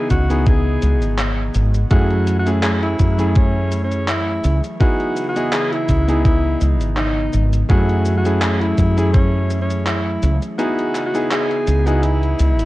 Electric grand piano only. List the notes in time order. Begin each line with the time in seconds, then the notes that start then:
Already playing: B3 D#4 E4 G#4
0.29 B3 D#4 E4 G#4
1.91 A3 C#4 E4 G#4
2.46 A3 C#4 E4 G#4
3.18 A3 C#4 E4 G#4
4.80 B3 D#4 E4 G#4
5.36 B3 E4 G#4 D#5
6.08 B3 D#4 E4 G#4
7.69 A3 C#4 E4 G#4
8.25 A3 C#4 E4 G#4
8.97 A3 C#4 E4 G#4
10.58 B3 D#4 E4 G#4
11.14 B3 D#4 E4 G#4
11.86 B3 D#4 E4 G#4